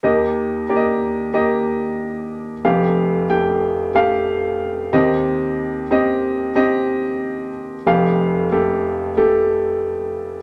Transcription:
<<
  \new Staff \with { instrumentName = "Upright piano" } { \time 4/4 \key f \mixolydian \tempo 4 = 92 <bes g' ees''>4 <bes g' d'' ees''>4 <bes g' ees''>2 | <a g' f''>4 <a g' g''>4 <a g' f''>4. <c' g' ees''>8~ | <c' g' ees''>4 <c' g' ees''>4 <c' g' ees''>2 | <a g' f''>4 <a g' a'>4 <a g' a'>2 | }
  \new Staff \with { instrumentName = "Upright piano" } { \clef bass \time 4/4 \key f \mixolydian <ees, ees>1 | <f,, f,>2.~ <f,, f,>8 <ees, ees>8~ | <ees, ees>2.~ <ees, ees>8 r8 | <f,, f,>1 | }
>>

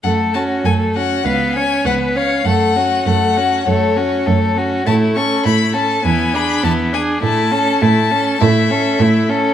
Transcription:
<<
  \new Staff \with { instrumentName = "Violin" } { \time 4/4 \key fis \minor \tempo 4 = 101 fis''8 a''8 gis''8 fis''8 eis''8 gis''8 fis''8 eis''8 | fis''4 fis''4 cis''4. r8 | a''8 cis'''8 b''8 a''8 gis''8 b''8 a''8 gis''8 | a''4 a''4 e''4. r8 | }
  \new Staff \with { instrumentName = "Violin" } { \time 4/4 \key fis \minor a'8 fis'8 a'8 fis'8 b'8 cis''8 b'8 cis''8 | a'8 fis'8 a'8 fis'8 a'8 fis'8 a'8 fis'8 | e'8 a'8 e'8 a'8 e'8 gis'8 e'8 gis'8 | e'8 a'8 e'8 a'8 e'8 a'8 e'8 a'8 | }
  \new Staff \with { instrumentName = "Viola" } { \time 4/4 \key fis \minor a8 cis'8 a8 cis'8 b8 cis'8 b8 cis'8 | a8 cis'8 a8 cis'8 a8 cis'8 a8 cis'8 | a8 cis'8 a8 cis'8 b8 d'8 b8 d'8 | a8 cis'8 a8 cis'8 a8 cis'8 a8 cis'8 | }
  \new Staff \with { instrumentName = "Cello" } { \clef bass \time 4/4 \key fis \minor fis,4 fis,4 cis,4 cis,4 | fis,4 fis,4 fis,4 fis,4 | a,4 a,4 e,4 e,4 | a,4 a,4 a,4 a,4 | }
>>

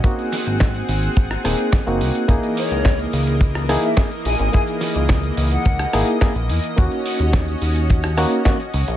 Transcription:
<<
  \new Staff \with { instrumentName = "Flute" } { \time 4/4 \key cis \dorian \tempo 4 = 107 r1 | r8 cis''8. r4. e''16 r8 gis''16 gis''16 | gis''16 r4. fis''4 r4 r16 | r1 | }
  \new Staff \with { instrumentName = "Analog synth pad" } { \time 4/4 \key cis \dorian << { fis''1 | dis''1~ | dis''1~ | dis''1 | } \\ { <bis gis'>1 | <e ais>1~ | <e ais>1 | <cis' fis'>1 | } >> }
  \new Staff \with { instrumentName = "Reed electric piano" } { \time 4/4 \key cis \dorian <ais bis dis' fis'>2~ <ais bis dis' fis'>8 <ais bis dis' gis'>8. <ais bis dis' fis'>8. | <ais dis' e' gis'>2~ <ais dis' e' gis'>8 <ais dis' e' gis'>8 <ais dis' e' gis'>16 r8. | <ais dis' e' gis'>2~ <ais dis' e' gis'>8 <ais dis' e' gis'>8 <ais dis' e' gis'>16 r8. | <ais cis' dis' fis'>2~ <ais cis' dis' fis'>8 <ais cis' dis' fis'>8 <ais cis' dis' fis'>16 r8. | }
  \new Staff \with { instrumentName = "Analog synth bass" } { \clef bass \time 4/4 \key cis \dorian r8. gis,,8. gis,,16 r16 gis,,16 r16 dis,,16 r8 fis,,16 bis,,16 r16 | cis,16 r8 cis,8. cis,4~ cis,16 r8. ais,,16 gis,,16 | r8. cis,8. cis,16 r16 cis,16 r16 gis,,16 r8 ais,,16 e,16 r16 | dis,16 r8 dis,8. dis,4~ dis,16 r8. cis,16 ais,,16 | }
  \new DrumStaff \with { instrumentName = "Drums" } \drummode { \time 4/4 <hh bd>16 hh16 <hho sn>16 hh16 <hh bd sn>16 hh16 hho16 hh16 <hh bd>16 <hh ss>16 <hho ss>16 hh16 <hh bd sn>16 hh16 hho16 hh16 | <hh bd>16 hh16 hho16 hh16 <hh bd sn>16 hh16 hho16 hh16 <hh bd>16 <hh ss>16 <hho ss>16 hh16 <hh bd sn>16 hh16 hho16 hh16 | <hh bd>16 hh16 <hho sn>16 hh16 <hh bd sn>16 hh16 hho16 hh16 <hh bd>16 <hh ss>16 <hho ss>16 hh16 <hh bd sn>16 hh16 hho16 hh16 | <hh bd>16 hh16 hho16 hh16 <hh bd sn>16 hh16 hho16 hh16 <hh bd>16 <hh ss>16 <hho ss>16 hh16 <hh bd sn>16 hh16 hho16 hh16 | }
>>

